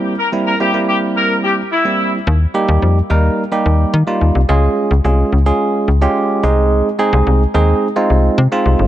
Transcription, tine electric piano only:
\new Staff \with { instrumentName = "Tine electric piano" } { \time 4/4 \key ees \mixolydian \tempo 4 = 108 <g bes c' e'>16 r16 <g bes c' e'>8 <g bes c' e'>16 <g bes c' e'>4. r8 <g bes c' e'>8 r16 | r8 <g bes ees' g'>8. r16 <g bes ees' bes'>8 r16 <g bes ees' g'>8. r16 <g bes ees' f'>8 r16 | <aes des' f' aes'>8. r16 <aes des' f' aes'>8 r16 <aes des' f' aes'>8. r16 <aes des' f' g'>8. <aes c' ees' aes'>8~ | <aes c' ees' aes'>16 r16 <aes c' ees' aes'>8. r16 <aes c' ees' aes'>8 r16 <aes c' ees' f'>8. r16 <aes c' ees' f'>8 r16 | }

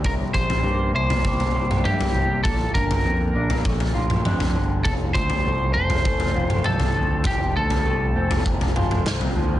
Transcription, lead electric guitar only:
\new Staff \with { instrumentName = "Lead electric guitar" } { \time 4/4 \key f \major \tempo 4 = 100 bes'8 c''4 c''4. g'4 | a'8 bes'4. r2 | a'8 c''4 c''4. a'4 | g'8 a'4. r2 | }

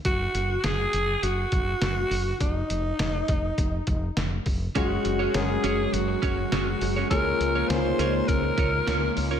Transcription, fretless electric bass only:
\new Staff \with { instrumentName = "Fretless electric bass" } { \clef bass \time 4/4 \key ges \lydian \tempo 4 = 102 ges,,8 ges,,8 ges,,8 ges,,8 ges,,8 ges,,8 ges,,8 ges,,8 | f,,8 f,,8 f,,8 f,,8 f,,8 f,,8 f,,8 f,,8 | ges,,8 ges,,8 ges,,8 ges,,8 ges,,8 ges,,8 ges,,8 ges,,8 | des,8 des,8 des,8 des,8 des,8 des,8 des,8 des,8 | }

